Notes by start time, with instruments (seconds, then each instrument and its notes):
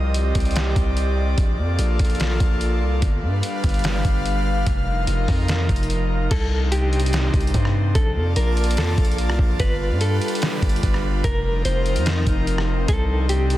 Already playing: 808-style bass C2, analog synth pad C4 G4 D5 D#5
0.14 closed hi-hat
0.35 808-style bass C2, kick, closed hi-hat
0.40 closed hi-hat
0.45 closed hi-hat
0.51 closed hi-hat
0.56 snare, closed hi-hat
0.76 808-style bass C2, kick, closed hi-hat
0.97 closed hi-hat
1.38 808-style bass A#1, analog synth pad A#3 F4 A4, kick, closed hi-hat
1.58 808-style bass F2
1.79 808-style bass A#1, closed hi-hat
1.99 808-style bass A#1, kick, closed hi-hat
2.05 closed hi-hat
2.10 closed hi-hat
2.15 closed hi-hat
2.20 snare, closed hi-hat
2.40 808-style bass A#1, kick, closed hi-hat
2.61 closed hi-hat
2.82 808-style bass C2
3.02 808-style bass G1, analog synth pad G3 D4 B4 F5, kick, closed hi-hat
3.23 808-style bass G2
3.43 closed hi-hat
3.64 808-style bass G1, kick, closed hi-hat
3.69 closed hi-hat
3.74 closed hi-hat
3.79 closed hi-hat
3.84 snare, closed hi-hat
4.05 808-style bass G1, kick, closed hi-hat
4.26 closed hi-hat
4.66 808-style bass F1, analog synth pad F3 D#4 A#4, kick, closed hi-hat
5.07 808-style bass F1, closed hi-hat
5.28 808-style bass F2, kick, open hi-hat
5.48 snare, closed hi-hat
5.69 808-style bass F1, kick, closed hi-hat
5.76 closed hi-hat
5.83 closed hi-hat
5.90 closed hi-hat
6.31 808-style bass C2, analog synth pad C3 C4 D4 D#4, clean electric guitar A4, kick, closed hi-hat, crash
6.72 clean electric guitar G4, closed hi-hat
6.93 closed hi-hat
7.00 closed hi-hat
7.06 closed hi-hat
7.13 snare, closed hi-hat
7.34 808-style bass C2, kick, closed hi-hat
7.41 closed hi-hat
7.47 closed hi-hat
7.54 808-style bass G2, kick, closed hi-hat
7.65 cross-stick
7.95 808-style bass A#1, analog synth pad A#3 F4 D5 A5, clean electric guitar A4, kick, closed hi-hat
8.16 808-style bass F2
8.36 808-style bass A#1, clean electric guitar A#4, closed hi-hat
8.57 closed hi-hat
8.64 closed hi-hat
8.71 closed hi-hat
8.77 808-style bass F2, clean electric guitar A4, snare, closed hi-hat
8.98 808-style bass A#1, kick, closed hi-hat
9.05 closed hi-hat
9.12 closed hi-hat
9.18 closed hi-hat
9.29 808-style bass C2, cross-stick
9.39 808-style bass A#1, kick
9.60 808-style bass G1, analog synth pad G3 D4 B4, clean electric guitar B4, kick, closed hi-hat
9.91 808-style bass G2
10.01 clean electric guitar A4, closed hi-hat
10.21 closed hi-hat
10.28 closed hi-hat
10.35 closed hi-hat
10.42 snare, closed hi-hat
10.62 808-style bass G1, kick, closed hi-hat
10.69 closed hi-hat
10.76 closed hi-hat
10.83 808-style bass G1, kick, closed hi-hat
10.94 cross-stick
11.24 808-style bass F1, analog synth pad F3 C4 D#4 A#4, clean electric guitar A#4, kick, closed hi-hat
11.65 808-style bass F1, clean electric guitar C5, closed hi-hat
11.86 closed hi-hat
11.96 808-style bass F2, closed hi-hat
12.06 clean electric guitar D#4, snare, closed hi-hat
12.27 808-style bass F1, kick, closed hi-hat
12.47 closed hi-hat
12.58 cross-stick
12.88 808-style bass C2, analog synth pad C3 D4, clean electric guitar A4, kick, closed hi-hat
13.29 clean electric guitar G4, closed hi-hat
13.50 closed hi-hat